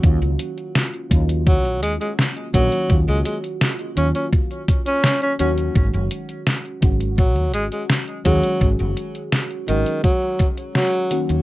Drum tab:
HH |xxxxxxxxxxxxxxxx|xxxxxxxxxxxxxxxx|xxxxxxxxxxxxxxxx|xxxxxxxxxxxxxxxx|
SD |----o-------o---|----o-------o---|----o-------o---|----o-------o---|
BD |o-----o-o-----o-|o-------o-o-----|o-----o-o-----o-|o-------o-o-----|